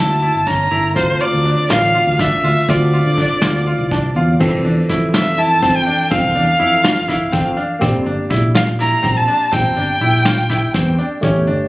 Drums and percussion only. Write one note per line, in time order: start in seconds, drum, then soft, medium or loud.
0.22 closed hi-hat medium
0.46 kick medium
0.46 closed hi-hat medium
0.71 closed hi-hat medium
0.95 kick loud
0.95 closed hi-hat medium
1.21 closed hi-hat medium
1.45 closed hi-hat medium
1.70 snare loud
1.70 closed hi-hat medium
1.95 closed hi-hat medium
2.19 kick loud
2.19 snare soft
2.19 closed hi-hat medium
2.44 closed hi-hat medium
2.68 kick loud
2.68 closed hi-hat medium
2.94 closed hi-hat soft
3.18 kick medium
3.18 closed hi-hat medium
3.42 snare medium
3.42 closed hi-hat medium
3.67 closed hi-hat medium
3.91 kick loud
3.91 closed hi-hat medium
4.16 closed hi-hat medium
4.40 kick loud
4.40 crash medium
4.40 shaker medium
4.66 closed hi-hat medium
4.89 kick medium
4.89 snare soft
4.89 closed hi-hat medium
5.14 snare loud
5.14 closed hi-hat medium
5.37 closed hi-hat medium
5.37 shaker medium
5.62 kick loud
5.62 closed hi-hat medium
5.87 closed hi-hat medium
5.87 shaker soft
6.11 kick loud
6.11 closed hi-hat medium
6.11 shaker medium
6.36 closed hi-hat soft
6.61 closed hi-hat medium
6.84 snare loud
6.84 closed hi-hat medium
7.09 kick medium
7.09 snare soft
7.09 closed hi-hat medium
7.09 shaker medium
7.33 kick loud
7.33 closed hi-hat medium
7.57 closed hi-hat medium
7.57 shaker soft
7.82 kick loud
7.82 closed hi-hat medium
7.82 shaker medium
8.06 closed hi-hat medium
8.31 kick medium
8.31 closed hi-hat medium
8.55 snare loud
8.55 closed hi-hat medium
8.79 snare soft
8.79 closed hi-hat medium
8.79 shaker medium
9.03 kick loud
9.03 closed hi-hat medium
9.28 closed hi-hat medium
9.28 shaker soft
9.52 kick loud
9.52 closed hi-hat medium
9.52 shaker medium
9.77 closed hi-hat medium
10.01 closed hi-hat medium
10.25 snare loud
10.25 closed hi-hat medium
10.49 kick medium
10.49 snare soft
10.49 closed hi-hat medium
10.49 shaker medium
10.73 kick loud
10.73 snare soft
10.73 closed hi-hat medium
10.73 shaker soft
10.98 closed hi-hat medium
10.98 shaker soft
11.22 kick loud
11.22 closed hi-hat medium
11.22 shaker medium
11.47 closed hi-hat soft